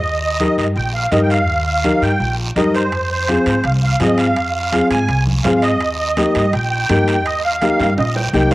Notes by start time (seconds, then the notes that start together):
Already playing: D#5
0.04 D#2, long guiro
0.21 D#5
0.40 D#4 G4 A#4, high conga, short guiro
0.57 G2 D#5, short guiro
0.76 A#1 G5, long guiro
0.94 F5
1.11 G2 D#4 G4 A#4 D#5, high conga, short guiro
1.23 G5
1.30 F5, short guiro
1.48 D#2, long guiro
1.66 F5
1.84 D#4 G4 A#4, high conga, short guiro
2.02 G2 G5, short guiro
2.20 A#1, long guiro
2.56 G2 D#4 G4 A#4 D#5, high conga, short guiro
2.74 C5, short guiro
2.92 F2, high timbale, long guiro
3.11 C5
3.28 C4 F4 G#4, high conga, high timbale, short guiro
3.46 G#2 C5, high timbale, short guiro
3.64 C2 F5, high timbale, long guiro
3.83 F5
4.00 G#2 C4 F4 G#4 D#5, high conga, high timbale, short guiro
4.18 F5, high timbale, short guiro
4.36 F2, high timbale, long guiro
4.54 F5
4.72 C4 F4 G#4, high conga, high timbale, short guiro
4.90 G#2 G#5, high timbale, short guiro
5.09 C2, high timbale, long guiro
5.27 high conga
5.44 G#2 C4 F4 G#4 F5, high conga, high timbale, low timbale, short guiro
5.55 F5
5.62 D#5, high timbale, short guiro
5.81 D#2, high timbale, long guiro
5.98 D#5
6.17 A#3 D#4 G4, high conga, high timbale, short guiro
6.35 G2 D#5, high timbale, short guiro
6.53 A#1 G5, high timbale, long guiro
6.70 G5
6.89 G2 A#3 D#4 G4, high conga, high timbale, short guiro
7.08 high timbale, short guiro
7.25 D#2 D#5, high timbale, long guiro
7.44 F5
7.61 A#3 D#4 G4, high conga, high timbale, short guiro
7.79 G2, high timbale, short guiro
7.97 A#1 D#5, high timbale, long guiro
8.15 G5, low timbale
8.33 C2 A#3 D#4 G4 G5, high conga, short guiro
8.51 F5, low timbale, short guiro